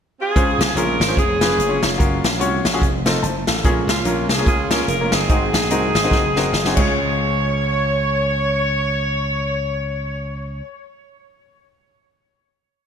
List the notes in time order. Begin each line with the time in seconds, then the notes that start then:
0.19 C4 F4 G#4
0.36 C#2 C#3 C#4 F4 G#4 C5, kick, closed hi-hat
0.59 C2, snare, closed hi-hat
0.75 A#1 C#4 F4 G#4 A#4, closed hi-hat
1.00 G#1, snare, closed hi-hat
1.08 C#4 F4 G#4 C5
1.17 F1 B3 C#4 G#4, kick, closed hi-hat
1.41 C#4 F4 G#4 B4, snare, closed hi-hat
1.58 F#1, closed hi-hat
1.69 C#4 F4 G#4 C#5
1.82 F1 A#3 C#4 F4, snare, closed hi-hat
1.98 F#1 C#4 F4 F#4 A#4, kick, closed hi-hat
2.24 A#1, snare, closed hi-hat
2.40 C2 C#4 F4 F#4 C#5, closed hi-hat
2.65 A#1, snare, closed hi-hat
2.73 C#4 F4 F#4 G#4
2.82 F1, kick, closed hi-hat
3.05 C4 D#4 F4 A4, snare, closed hi-hat
3.23 F#1 C5 A5, closed hi-hat
3.47 A1 A4 F5, snare, closed hi-hat
3.64 A#1 A#2 A#3 C#4 F4 G#4, kick, closed hi-hat
3.87 C#2 G#3 C#4 F4, snare, closed hi-hat
4.05 A#1 A#3 C#4 F4 A#4, closed hi-hat
4.29 C2 G#4, snare, closed hi-hat
4.38 A#3 C#4 F4 G#4
4.46 C#2 C#4 F4 G#4, kick, closed hi-hat
4.70 A#3 C#4 F4 G#4 A#4, snare, closed hi-hat
4.88 F1 A#4, closed hi-hat
5.01 A#3 C#4 F4 A#4
5.12 F#1 C4 D#4 G#4, snare, closed hi-hat
5.29 G#1 G#2 C4 D#4 F#4 G#4, kick, closed hi-hat
5.53 A#1, snare, closed hi-hat
5.70 C2 C4 D#4 F#4 A#4, closed hi-hat
5.94 G#1, snare, closed hi-hat
6.03 C4 D#4 F#4 A#4
6.11 F#1, kick, snare
6.36 C4 D#4 F#4 A#4, snare
6.53 F#1, snare
6.65 C4 D#4 F#4 G#4, snare
6.76 C#2 G#3 C#4 F4 G#4 C#5, kick, crash